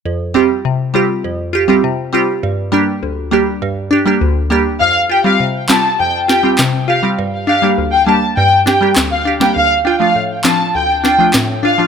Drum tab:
CP |----------------|----------------|------x-----x---|------------x---|
SD |----------------|----------------|------o---o-o---|----------o-o--o|

CP |------x-----x---|
SD |------o---o-o---|